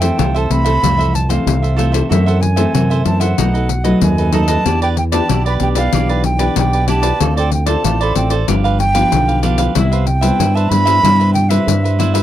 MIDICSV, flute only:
0, 0, Header, 1, 2, 480
1, 0, Start_track
1, 0, Key_signature, 0, "major"
1, 0, Tempo, 638298
1, 1583, Time_signature, 4, 2, 24, 8
1, 9196, End_track
2, 0, Start_track
2, 0, Title_t, "Flute"
2, 0, Program_c, 0, 73
2, 0, Note_on_c, 0, 79, 80
2, 284, Note_on_c, 0, 81, 90
2, 295, Note_off_c, 0, 79, 0
2, 387, Note_on_c, 0, 83, 110
2, 398, Note_off_c, 0, 81, 0
2, 866, Note_on_c, 0, 81, 89
2, 877, Note_off_c, 0, 83, 0
2, 978, Note_on_c, 0, 77, 72
2, 989, Note_off_c, 0, 81, 0
2, 1340, Note_off_c, 0, 77, 0
2, 1580, Note_on_c, 0, 76, 74
2, 1707, Note_on_c, 0, 78, 81
2, 1718, Note_off_c, 0, 76, 0
2, 1814, Note_on_c, 0, 80, 82
2, 1826, Note_off_c, 0, 78, 0
2, 2292, Note_off_c, 0, 80, 0
2, 2297, Note_on_c, 0, 81, 88
2, 2410, Note_on_c, 0, 78, 83
2, 2421, Note_off_c, 0, 81, 0
2, 3016, Note_off_c, 0, 78, 0
2, 3025, Note_on_c, 0, 80, 88
2, 3261, Note_on_c, 0, 81, 104
2, 3272, Note_off_c, 0, 80, 0
2, 3621, Note_off_c, 0, 81, 0
2, 3631, Note_on_c, 0, 79, 92
2, 3676, Note_off_c, 0, 79, 0
2, 3745, Note_on_c, 0, 79, 81
2, 3790, Note_off_c, 0, 79, 0
2, 3859, Note_on_c, 0, 81, 96
2, 4083, Note_off_c, 0, 81, 0
2, 4121, Note_on_c, 0, 83, 91
2, 4167, Note_off_c, 0, 83, 0
2, 4230, Note_on_c, 0, 79, 90
2, 4275, Note_off_c, 0, 79, 0
2, 4343, Note_on_c, 0, 77, 99
2, 4677, Note_off_c, 0, 77, 0
2, 4699, Note_on_c, 0, 79, 94
2, 4923, Note_off_c, 0, 79, 0
2, 4951, Note_on_c, 0, 79, 90
2, 5170, Note_off_c, 0, 79, 0
2, 5182, Note_on_c, 0, 81, 99
2, 5517, Note_off_c, 0, 81, 0
2, 5554, Note_on_c, 0, 79, 82
2, 5660, Note_off_c, 0, 79, 0
2, 5667, Note_on_c, 0, 79, 73
2, 5770, Note_off_c, 0, 79, 0
2, 5775, Note_on_c, 0, 81, 80
2, 6031, Note_on_c, 0, 83, 85
2, 6042, Note_off_c, 0, 81, 0
2, 6137, Note_off_c, 0, 83, 0
2, 6142, Note_on_c, 0, 79, 72
2, 6253, Note_off_c, 0, 79, 0
2, 6613, Note_on_c, 0, 79, 115
2, 7067, Note_off_c, 0, 79, 0
2, 7343, Note_on_c, 0, 76, 82
2, 7458, Note_on_c, 0, 77, 82
2, 7469, Note_off_c, 0, 76, 0
2, 7568, Note_on_c, 0, 79, 89
2, 7579, Note_off_c, 0, 77, 0
2, 7933, Note_on_c, 0, 81, 97
2, 7944, Note_off_c, 0, 79, 0
2, 8041, Note_on_c, 0, 83, 118
2, 8052, Note_off_c, 0, 81, 0
2, 8521, Note_off_c, 0, 83, 0
2, 8525, Note_on_c, 0, 79, 83
2, 8642, Note_on_c, 0, 76, 75
2, 8653, Note_off_c, 0, 79, 0
2, 9012, Note_off_c, 0, 76, 0
2, 9196, End_track
0, 0, End_of_file